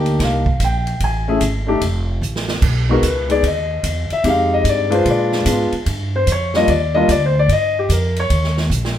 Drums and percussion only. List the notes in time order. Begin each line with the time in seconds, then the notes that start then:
0.06 ride
0.19 kick, snare, ride
0.46 kick
0.60 kick, hi-hat pedal, ride
0.87 ride
1.00 kick, ride
1.41 kick, hi-hat pedal, ride
1.81 kick, ride
2.22 hi-hat pedal
2.36 snare
2.48 snare
2.62 kick, crash
3.03 kick, hi-hat pedal, ride
3.30 ride
3.43 kick, ride
3.83 kick, hi-hat pedal, ride
4.10 ride
4.24 kick, ride
4.65 kick, hi-hat pedal, ride
4.92 ride
5.05 kick, ride
5.32 snare
5.46 kick, hi-hat pedal, ride
5.72 ride
5.86 kick, ride
6.27 kick, hi-hat pedal, ride
6.54 snare
6.68 kick, ride
7.08 kick, hi-hat pedal, ride
7.49 kick, ride
7.90 kick, hi-hat pedal, ride
8.16 ride
8.30 kick, ride
8.44 snare
8.57 snare
8.71 hi-hat pedal
8.85 snare